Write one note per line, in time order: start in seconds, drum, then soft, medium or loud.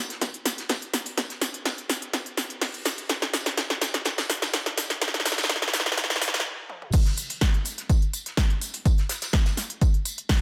0.10 snare soft
0.10 closed hi-hat soft
0.21 kick loud
0.21 snare medium
0.21 closed hi-hat medium
0.21 tambourine medium
0.34 closed hi-hat soft
0.45 snare medium
0.45 open hi-hat loud
0.45 tambourine medium
0.58 snare soft
0.58 closed hi-hat soft
0.69 kick loud
0.69 snare medium
0.69 snare loud
0.69 closed hi-hat medium
0.69 tambourine medium
0.82 closed hi-hat soft
0.94 snare medium
0.94 open hi-hat loud
0.94 tambourine medium
1.06 closed hi-hat soft
1.18 kick loud
1.18 snare medium
1.18 closed hi-hat medium
1.18 tambourine medium
1.30 snare soft
1.30 closed hi-hat soft
1.41 snare medium
1.41 open hi-hat loud
1.41 tambourine medium
1.54 closed hi-hat soft
1.65 kick loud
1.65 snare medium
1.65 snare loud
1.65 closed hi-hat medium
1.65 tambourine medium
1.78 closed hi-hat soft
1.89 snare medium
1.89 open hi-hat loud
1.89 tambourine medium
2.02 closed hi-hat soft
2.13 kick loud
2.13 snare medium
2.13 closed hi-hat medium
2.13 tambourine medium
2.26 closed hi-hat soft
2.37 snare medium
2.37 open hi-hat loud
2.37 tambourine medium
2.50 closed hi-hat soft
2.61 kick loud
2.61 snare medium
2.61 snare loud
2.61 closed hi-hat medium
2.61 open hi-hat medium
2.74 closed hi-hat soft
2.85 snare medium
2.85 open hi-hat loud
2.85 tambourine medium
2.98 closed hi-hat soft
3.09 kick loud
3.09 snare medium
3.09 closed hi-hat loud
3.09 tambourine medium
3.22 snare medium
3.22 snare soft
3.22 closed hi-hat soft
3.33 snare medium
3.33 open hi-hat loud
3.33 tambourine medium
3.46 snare medium
3.46 closed hi-hat soft
3.57 kick loud
3.57 snare medium
3.57 snare loud
3.57 closed hi-hat medium
3.57 tambourine medium
3.70 snare medium
3.70 closed hi-hat soft
3.81 snare loud
3.81 snare medium
3.81 open hi-hat loud
3.81 tambourine medium
3.94 snare medium
3.94 closed hi-hat soft
4.05 kick loud
4.05 snare medium
4.05 closed hi-hat medium
4.05 tambourine medium
4.18 snare medium
4.18 snare loud
4.18 closed hi-hat soft
4.18 tambourine medium
4.30 snare loud
4.30 open hi-hat loud
4.42 snare medium
4.42 closed hi-hat soft
4.42 tambourine medium
4.53 kick loud
4.53 snare loud
4.53 closed hi-hat medium
4.53 tambourine medium
4.66 snare medium
4.66 closed hi-hat soft
4.78 snare loud
4.78 open hi-hat loud
4.78 tambourine medium
4.90 snare medium
4.90 closed hi-hat soft
5.02 kick loud
5.02 snare loud
5.02 closed hi-hat loud
5.02 tambourine medium
5.08 snare medium
5.14 snare medium
5.14 snare soft
5.14 closed hi-hat soft
5.20 snare medium
5.25 snare loud
5.25 snare medium
5.25 open hi-hat loud
5.25 tambourine medium
5.32 snare medium
5.32 tambourine medium
5.38 snare medium
5.38 closed hi-hat soft
5.38 tambourine medium
5.43 snare medium
5.43 tambourine medium
5.49 kick loud
5.49 snare loud
5.49 closed hi-hat medium
5.56 snare medium
5.62 snare medium
5.62 closed hi-hat soft
5.68 snare medium
5.73 snare loud
5.73 snare medium
5.73 open hi-hat loud
5.73 tambourine medium
5.80 snare medium
5.86 snare medium
5.86 closed hi-hat soft
5.92 snare loud
5.97 kick loud
5.97 snare loud
5.97 closed hi-hat loud
5.97 tambourine medium
6.04 snare medium
6.10 snare loud
6.10 snare medium
6.10 closed hi-hat soft
6.10 tambourine medium
6.16 snare medium
6.22 snare loud
6.22 open hi-hat loud
6.28 snare medium
6.34 snare loud
6.34 closed hi-hat soft
6.34 tambourine medium
6.40 snare loud
6.69 high tom medium
6.82 mid tom medium
6.92 kick loud
6.92 closed hi-hat medium
6.92 crash loud
6.92 tambourine medium
7.06 snare soft
7.06 closed hi-hat soft
7.17 open hi-hat loud
7.17 tambourine medium
7.30 closed hi-hat soft
7.30 closed hi-hat medium
7.41 kick loud
7.41 snare loud
7.41 closed hi-hat medium
7.41 tambourine loud
7.54 closed hi-hat soft
7.65 open hi-hat loud
7.65 tambourine medium
7.78 snare soft
7.78 closed hi-hat medium
7.89 kick loud
7.89 closed hi-hat medium
7.89 tambourine medium
8.02 closed hi-hat soft
8.13 open hi-hat loud
8.13 tambourine medium
8.26 snare soft
8.26 closed hi-hat medium
8.37 kick loud
8.37 snare loud
8.37 closed hi-hat medium
8.37 tambourine medium
8.50 closed hi-hat soft
8.61 open hi-hat loud
8.61 tambourine medium
8.74 closed hi-hat soft
8.74 closed hi-hat medium
8.85 kick loud
8.85 closed hi-hat medium
8.85 tambourine medium
8.98 snare soft
8.98 closed hi-hat soft
9.09 snare loud
9.09 open hi-hat loud
9.09 tambourine medium
9.22 snare loud
9.22 closed hi-hat medium
9.22 tambourine medium
9.33 kick loud
9.33 snare loud
9.33 closed hi-hat medium
9.33 tambourine medium
9.46 snare loud
9.46 closed hi-hat soft
9.46 tambourine medium
9.57 snare soft
9.57 open hi-hat loud
9.57 tambourine medium
9.70 closed hi-hat medium
9.81 kick loud
9.81 closed hi-hat medium
9.81 tambourine medium
9.94 closed hi-hat soft
10.05 open hi-hat loud
10.05 tambourine medium
10.18 closed hi-hat medium
10.29 kick loud
10.29 snare loud
10.29 closed hi-hat medium
10.29 open hi-hat medium